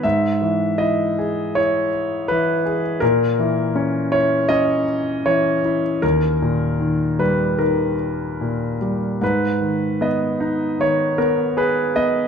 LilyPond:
<<
  \new Staff \with { instrumentName = "Grand piano" } { \time 4/4 \key gis \minor \tempo 4 = 78 e''4 dis''4 cis''4 b'8. r16 | ais'4. cis''8 dis''4 cis''8. r16 | ais'4. b'8 ais'4. r8 | b'4 dis''4 cis''8 ais'8 b'8 dis''8 | }
  \new Staff \with { instrumentName = "Grand piano" } { \clef bass \time 4/4 \key gis \minor gis,8 e8 e'8 gis'8 e'4 e8 gis'8 | ais,8 e8 cis'8 e'8 cis'4 e8 e'8 | dis,8 ais,8 dis8 g8 dis4 ais,8 g8 | gis,8 dis8 b8 dis'8 dis8 b8 gis'8 b8 | }
>>